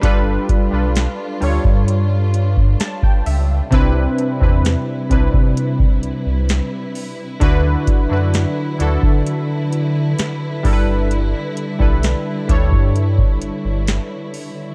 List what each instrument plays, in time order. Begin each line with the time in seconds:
Already playing: string section G3 D4 B4
0.01 sub bass G1, synth keys G3 D4 F4 A4 B4, string section F4, kick, closed hi-hat
0.49 kick, closed hi-hat
0.71 sub bass B1, synth keys G3 D4 F4 A4 B4
0.96 snare, closed hi-hat
1.40 sub bass D2, synth keys G3 D4 F4 A4 C#5, open hi-hat
1.65 sub bass G2, kick
1.88 closed hi-hat
2.34 closed hi-hat
2.57 kick
2.80 synth keys A5, snare, closed hi-hat
3.03 synth keys G5, kick
3.26 sub bass C#2, synth keys E5, open hi-hat
3.71 sub bass C2, synth keys C3 C4 D4 E4 B4, string section C3 G3 E4 B4, kick, closed hi-hat
4.18 closed hi-hat
4.40 sub bass E2, synth keys C3 C4 D4 E4 B4, kick
4.65 snare, closed hi-hat
5.09 sub bass C2, synth keys C3 C4 D4 E4 B4, kick, closed hi-hat
5.34 sub bass C3, kick
5.57 closed hi-hat
5.80 kick
6.03 sub bass C2, closed hi-hat
6.27 sub bass C2
6.49 snare, closed hi-hat
6.95 open hi-hat
7.40 sub bass D2, synth keys D3 D4 E4 F#4 B4, string section D3 F#3, kick, closed hi-hat
7.87 kick, closed hi-hat
8.09 sub bass F#2, synth keys D3 D4 E4 F#4 B4
8.34 snare, closed hi-hat
8.78 sub bass D2, synth keys D3 D4 E4 F#4 A4, closed hi-hat
9.03 sub bass D3, kick
9.27 closed hi-hat
9.73 closed hi-hat
10.19 snare, closed hi-hat
10.63 sub bass G1, synth keys G3 D4 E4 A4 A#4, string section G3, kick, open hi-hat
10.73 synth keys B4
11.11 closed hi-hat
11.57 closed hi-hat
11.79 sub bass B1, synth keys G3 D4 E4 A4 B4, kick
12.03 snare, closed hi-hat
12.48 sub bass D2, synth keys G3 D4 E4 A4 C#5, kick, closed hi-hat
12.72 sub bass G2, kick
12.96 closed hi-hat
13.18 kick
13.42 sub bass G1, closed hi-hat
13.65 sub bass G1
13.87 snare, closed hi-hat
14.34 open hi-hat